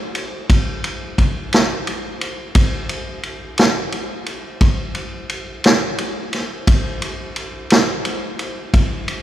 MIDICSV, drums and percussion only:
0, 0, Header, 1, 2, 480
1, 0, Start_track
1, 0, Tempo, 686499
1, 352, Time_signature, 12, 3, 24, 8
1, 6449, End_track
2, 0, Start_track
2, 0, Title_t, "Drums"
2, 104, Note_on_c, 9, 51, 60
2, 174, Note_off_c, 9, 51, 0
2, 346, Note_on_c, 9, 51, 78
2, 347, Note_on_c, 9, 36, 97
2, 416, Note_off_c, 9, 51, 0
2, 417, Note_off_c, 9, 36, 0
2, 587, Note_on_c, 9, 51, 61
2, 657, Note_off_c, 9, 51, 0
2, 827, Note_on_c, 9, 36, 73
2, 828, Note_on_c, 9, 51, 60
2, 897, Note_off_c, 9, 36, 0
2, 898, Note_off_c, 9, 51, 0
2, 1067, Note_on_c, 9, 51, 77
2, 1078, Note_on_c, 9, 38, 92
2, 1137, Note_off_c, 9, 51, 0
2, 1148, Note_off_c, 9, 38, 0
2, 1308, Note_on_c, 9, 51, 60
2, 1378, Note_off_c, 9, 51, 0
2, 1547, Note_on_c, 9, 51, 57
2, 1617, Note_off_c, 9, 51, 0
2, 1782, Note_on_c, 9, 51, 85
2, 1785, Note_on_c, 9, 36, 98
2, 1852, Note_off_c, 9, 51, 0
2, 1855, Note_off_c, 9, 36, 0
2, 2022, Note_on_c, 9, 51, 61
2, 2092, Note_off_c, 9, 51, 0
2, 2261, Note_on_c, 9, 51, 51
2, 2331, Note_off_c, 9, 51, 0
2, 2501, Note_on_c, 9, 51, 74
2, 2512, Note_on_c, 9, 38, 98
2, 2571, Note_off_c, 9, 51, 0
2, 2582, Note_off_c, 9, 38, 0
2, 2743, Note_on_c, 9, 51, 56
2, 2813, Note_off_c, 9, 51, 0
2, 2981, Note_on_c, 9, 51, 49
2, 3051, Note_off_c, 9, 51, 0
2, 3221, Note_on_c, 9, 51, 70
2, 3223, Note_on_c, 9, 36, 95
2, 3291, Note_off_c, 9, 51, 0
2, 3293, Note_off_c, 9, 36, 0
2, 3458, Note_on_c, 9, 51, 52
2, 3528, Note_off_c, 9, 51, 0
2, 3702, Note_on_c, 9, 51, 58
2, 3772, Note_off_c, 9, 51, 0
2, 3943, Note_on_c, 9, 51, 77
2, 3955, Note_on_c, 9, 38, 100
2, 4013, Note_off_c, 9, 51, 0
2, 4025, Note_off_c, 9, 38, 0
2, 4184, Note_on_c, 9, 51, 63
2, 4254, Note_off_c, 9, 51, 0
2, 4424, Note_on_c, 9, 51, 61
2, 4435, Note_on_c, 9, 38, 29
2, 4494, Note_off_c, 9, 51, 0
2, 4505, Note_off_c, 9, 38, 0
2, 4666, Note_on_c, 9, 36, 104
2, 4667, Note_on_c, 9, 51, 90
2, 4736, Note_off_c, 9, 36, 0
2, 4737, Note_off_c, 9, 51, 0
2, 4907, Note_on_c, 9, 51, 63
2, 4977, Note_off_c, 9, 51, 0
2, 5146, Note_on_c, 9, 51, 59
2, 5216, Note_off_c, 9, 51, 0
2, 5386, Note_on_c, 9, 51, 79
2, 5397, Note_on_c, 9, 38, 110
2, 5456, Note_off_c, 9, 51, 0
2, 5467, Note_off_c, 9, 38, 0
2, 5628, Note_on_c, 9, 51, 62
2, 5698, Note_off_c, 9, 51, 0
2, 5867, Note_on_c, 9, 51, 56
2, 5936, Note_off_c, 9, 51, 0
2, 6108, Note_on_c, 9, 36, 95
2, 6108, Note_on_c, 9, 51, 73
2, 6178, Note_off_c, 9, 36, 0
2, 6178, Note_off_c, 9, 51, 0
2, 6347, Note_on_c, 9, 51, 59
2, 6417, Note_off_c, 9, 51, 0
2, 6449, End_track
0, 0, End_of_file